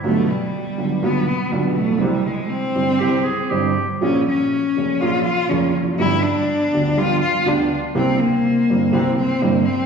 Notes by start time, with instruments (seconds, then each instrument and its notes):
0.03 upright piano B1 B2 D3 G3 B3 F4, cello A3
0.31 cello G3
0.78 upright piano B1 B2 D3 G3 B3 F4
1.02 upright piano B1 B2 D3 G3 B3 F4, cello B3
1.29 cello B3
1.51 upright piano B1 B2 D3 G3 B3 F4, cello G3
1.76 cello A3
1.83 upright piano A1
1.89 upright piano A#1
1.96 upright piano B1
2.01 upright piano C2 C3 E3 G3 C4 G4, cello G3
2.26 cello G#3
2.50 cello C4
2.75 upright piano G1 G2 E3 G3 C4 G4
2.99 upright piano C2 C3 E3 G3 C4 G4, clarinet G4
3.24 clarinet G#4
3.50 upright piano G1 G2 E3 G3 C4 G4, clarinet G4
4.01 upright piano A#1 A#2 F3 A#3 C#4 G#4, cello C#4
4.28 cello C#4
4.77 upright piano F1 F2 F3 A#3 C#4 G#4
5.01 upright piano A#1 A#2 F3 A#3 C#4 G#4, cello F4
5.24 cello F4
5.49 upright piano F1 F2 F3 A#3 C#4 G#4, cello C#4
5.82 upright piano E2
5.87 upright piano F2
5.93 upright piano F#2
5.99 upright piano G1 G2 F3 B3 D4 G4, cello E4
6.23 cello D4
6.73 upright piano D2 D3 F3 B3 D4 G4
6.97 upright piano G1 G2 F3 B3 D4 G4, cello F4
7.22 cello F4
7.46 upright piano D2 D3 F3 B3 D4 G4, cello D4
7.95 upright piano C2 C3 E3 A#3 C4 G4, cello C4
8.19 cello A#3
8.70 upright piano G1 G2 E3 A#3 C4 G4
8.92 upright piano C2 C3 E3 A#3 C4 G4, cello C4
9.17 cello C4
9.41 upright piano G1 G2 E3 A#3 C4 G4, cello A#3
9.65 cello C4